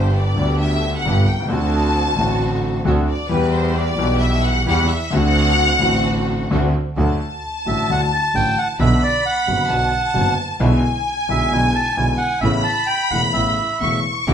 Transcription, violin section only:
0, 0, Header, 1, 2, 480
1, 0, Start_track
1, 0, Tempo, 454890
1, 1591, Time_signature, 4, 2, 24, 8
1, 13113, Tempo, 463679
1, 15089, End_track
2, 0, Start_track
2, 0, Title_t, "Violin section"
2, 0, Program_c, 0, 48
2, 0, Note_on_c, 0, 72, 71
2, 154, Note_off_c, 0, 72, 0
2, 164, Note_on_c, 0, 74, 88
2, 633, Note_on_c, 0, 76, 87
2, 640, Note_off_c, 0, 74, 0
2, 968, Note_off_c, 0, 76, 0
2, 1015, Note_on_c, 0, 78, 88
2, 1355, Note_on_c, 0, 79, 74
2, 1363, Note_off_c, 0, 78, 0
2, 1593, Note_off_c, 0, 79, 0
2, 1598, Note_on_c, 0, 81, 99
2, 2979, Note_off_c, 0, 81, 0
2, 3249, Note_on_c, 0, 74, 79
2, 3475, Note_off_c, 0, 74, 0
2, 3478, Note_on_c, 0, 71, 97
2, 3725, Note_on_c, 0, 72, 85
2, 3726, Note_off_c, 0, 71, 0
2, 3968, Note_on_c, 0, 74, 105
2, 3969, Note_off_c, 0, 72, 0
2, 4434, Note_on_c, 0, 76, 102
2, 4449, Note_off_c, 0, 74, 0
2, 4683, Note_off_c, 0, 76, 0
2, 4688, Note_on_c, 0, 78, 104
2, 4920, Note_off_c, 0, 78, 0
2, 4932, Note_on_c, 0, 78, 104
2, 5156, Note_off_c, 0, 78, 0
2, 5170, Note_on_c, 0, 76, 90
2, 5413, Note_off_c, 0, 76, 0
2, 5413, Note_on_c, 0, 78, 127
2, 6874, Note_off_c, 0, 78, 0
2, 7358, Note_on_c, 0, 81, 105
2, 9243, Note_off_c, 0, 81, 0
2, 9287, Note_on_c, 0, 83, 106
2, 10221, Note_on_c, 0, 81, 108
2, 10236, Note_off_c, 0, 83, 0
2, 11184, Note_off_c, 0, 81, 0
2, 11198, Note_on_c, 0, 80, 111
2, 13109, Note_on_c, 0, 83, 118
2, 13113, Note_off_c, 0, 80, 0
2, 14505, Note_off_c, 0, 83, 0
2, 14544, Note_on_c, 0, 85, 93
2, 14995, Note_off_c, 0, 85, 0
2, 15020, Note_on_c, 0, 86, 127
2, 15089, Note_off_c, 0, 86, 0
2, 15089, End_track
0, 0, End_of_file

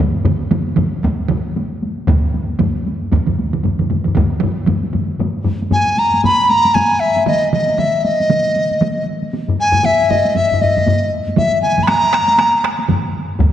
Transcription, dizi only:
0, 0, Header, 1, 2, 480
1, 0, Start_track
1, 0, Tempo, 519931
1, 958, Time_signature, 4, 2, 24, 8
1, 6232, Tempo, 511509
1, 12592, End_track
2, 0, Start_track
2, 0, Title_t, "Dizi"
2, 0, Program_c, 0, 73
2, 5288, Note_on_c, 0, 80, 81
2, 5528, Note_on_c, 0, 82, 84
2, 5542, Note_off_c, 0, 80, 0
2, 5760, Note_off_c, 0, 82, 0
2, 5765, Note_on_c, 0, 83, 92
2, 5997, Note_on_c, 0, 82, 87
2, 6010, Note_off_c, 0, 83, 0
2, 6226, Note_on_c, 0, 80, 79
2, 6240, Note_off_c, 0, 82, 0
2, 6464, Note_on_c, 0, 76, 81
2, 6478, Note_off_c, 0, 80, 0
2, 6712, Note_off_c, 0, 76, 0
2, 6721, Note_on_c, 0, 75, 78
2, 6944, Note_off_c, 0, 75, 0
2, 6962, Note_on_c, 0, 75, 72
2, 7202, Note_on_c, 0, 76, 75
2, 7216, Note_off_c, 0, 75, 0
2, 7407, Note_off_c, 0, 76, 0
2, 7407, Note_on_c, 0, 76, 49
2, 7432, Note_on_c, 0, 75, 74
2, 7446, Note_off_c, 0, 76, 0
2, 8401, Note_off_c, 0, 75, 0
2, 8909, Note_on_c, 0, 80, 91
2, 9141, Note_on_c, 0, 76, 86
2, 9155, Note_off_c, 0, 80, 0
2, 9378, Note_on_c, 0, 75, 77
2, 9392, Note_off_c, 0, 76, 0
2, 9622, Note_on_c, 0, 76, 82
2, 9636, Note_off_c, 0, 75, 0
2, 9858, Note_on_c, 0, 75, 74
2, 9872, Note_off_c, 0, 76, 0
2, 10331, Note_off_c, 0, 75, 0
2, 10574, Note_on_c, 0, 76, 81
2, 10792, Note_off_c, 0, 76, 0
2, 10802, Note_on_c, 0, 80, 82
2, 10999, Note_on_c, 0, 83, 61
2, 11013, Note_off_c, 0, 80, 0
2, 11032, Note_on_c, 0, 82, 90
2, 11046, Note_off_c, 0, 83, 0
2, 11754, Note_off_c, 0, 82, 0
2, 12592, End_track
0, 0, End_of_file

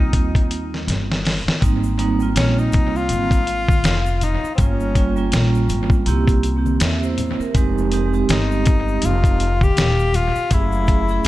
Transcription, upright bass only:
0, 0, Header, 1, 3, 480
1, 0, Start_track
1, 0, Key_signature, -4, "major"
1, 0, Tempo, 740741
1, 1053, Time_signature, 4, 2, 24, 8
1, 7309, End_track
2, 0, Start_track
2, 0, Title_t, "Upright bass"
2, 0, Program_c, 0, 32
2, 0, Note_on_c, 0, 36, 82
2, 78, Note_off_c, 0, 36, 0
2, 84, Note_on_c, 0, 39, 87
2, 544, Note_off_c, 0, 39, 0
2, 567, Note_on_c, 0, 31, 88
2, 931, Note_off_c, 0, 31, 0
2, 1050, Note_on_c, 0, 32, 96
2, 1507, Note_off_c, 0, 32, 0
2, 1525, Note_on_c, 0, 34, 83
2, 1757, Note_off_c, 0, 34, 0
2, 1776, Note_on_c, 0, 36, 83
2, 1999, Note_off_c, 0, 36, 0
2, 2003, Note_on_c, 0, 32, 88
2, 2464, Note_off_c, 0, 32, 0
2, 2485, Note_on_c, 0, 29, 86
2, 2850, Note_off_c, 0, 29, 0
2, 2971, Note_on_c, 0, 31, 104
2, 3428, Note_off_c, 0, 31, 0
2, 3450, Note_on_c, 0, 34, 89
2, 3679, Note_off_c, 0, 34, 0
2, 3689, Note_on_c, 0, 32, 90
2, 3919, Note_off_c, 0, 32, 0
2, 3929, Note_on_c, 0, 36, 93
2, 4387, Note_off_c, 0, 36, 0
2, 4410, Note_on_c, 0, 40, 82
2, 4773, Note_off_c, 0, 40, 0
2, 4890, Note_on_c, 0, 29, 104
2, 5347, Note_off_c, 0, 29, 0
2, 5372, Note_on_c, 0, 31, 87
2, 5828, Note_off_c, 0, 31, 0
2, 5852, Note_on_c, 0, 29, 92
2, 6308, Note_off_c, 0, 29, 0
2, 6329, Note_on_c, 0, 27, 88
2, 6692, Note_off_c, 0, 27, 0
2, 6810, Note_on_c, 0, 30, 108
2, 7267, Note_off_c, 0, 30, 0
2, 7288, Note_on_c, 0, 32, 85
2, 7309, Note_off_c, 0, 32, 0
2, 7309, End_track
3, 0, Start_track
3, 0, Title_t, "Muted upright bass strokes"
3, 949, Note_on_c, 9, 29, 44
3, 1014, Note_off_c, 9, 29, 0
3, 2867, Note_on_c, 9, 29, 43
3, 2932, Note_off_c, 9, 29, 0
3, 4792, Note_on_c, 9, 29, 47
3, 4857, Note_off_c, 9, 29, 0
3, 6711, Note_on_c, 9, 29, 44
3, 6776, Note_off_c, 9, 29, 0
3, 7309, End_track
0, 0, End_of_file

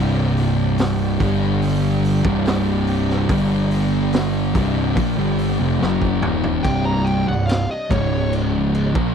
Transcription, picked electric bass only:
0, 0, Header, 1, 2, 480
1, 0, Start_track
1, 0, Key_signature, -3, "minor"
1, 0, Tempo, 836820
1, 1889, Time_signature, 4, 2, 24, 8
1, 5247, End_track
2, 0, Start_track
2, 0, Title_t, "Picked electric bass"
2, 0, Program_c, 0, 34
2, 0, Note_on_c, 0, 24, 96
2, 666, Note_off_c, 0, 24, 0
2, 690, Note_on_c, 0, 31, 92
2, 1266, Note_off_c, 0, 31, 0
2, 1289, Note_on_c, 0, 24, 99
2, 1866, Note_off_c, 0, 24, 0
2, 1890, Note_on_c, 0, 31, 95
2, 2586, Note_off_c, 0, 31, 0
2, 2612, Note_on_c, 0, 24, 101
2, 2834, Note_off_c, 0, 24, 0
2, 2851, Note_on_c, 0, 34, 100
2, 2961, Note_off_c, 0, 34, 0
2, 2972, Note_on_c, 0, 31, 84
2, 3194, Note_off_c, 0, 31, 0
2, 3211, Note_on_c, 0, 29, 96
2, 3322, Note_off_c, 0, 29, 0
2, 3335, Note_on_c, 0, 30, 96
2, 3556, Note_off_c, 0, 30, 0
2, 3571, Note_on_c, 0, 27, 93
2, 3794, Note_off_c, 0, 27, 0
2, 3814, Note_on_c, 0, 24, 94
2, 4150, Note_off_c, 0, 24, 0
2, 4176, Note_on_c, 0, 24, 87
2, 4397, Note_off_c, 0, 24, 0
2, 4536, Note_on_c, 0, 25, 97
2, 5112, Note_off_c, 0, 25, 0
2, 5136, Note_on_c, 0, 34, 90
2, 5247, Note_off_c, 0, 34, 0
2, 5247, End_track
0, 0, End_of_file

